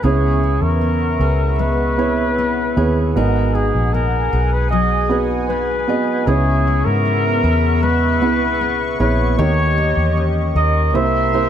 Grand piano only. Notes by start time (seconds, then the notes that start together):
0.04 C#3 B3 E4 G#4 C#5
1.97 B3 E4 G#4 C#5
2.77 B3 E4 G#4 C#5
3.16 G#2 B3 F#4 G#4 D#5
5.09 B3 F#4 G#4 B4
5.88 B3 F#4 G#4 D#5
6.27 C#3 B3 E4 G#4 C#5
8.22 B3 E4 G#4 E5
8.99 B3 E4 G#4 C#5
9.38 D#3 A#3 D#4 G4 C#5
10.94 C3 A#3 E4 G4 C5
11.33 A#3 E4 G4 C5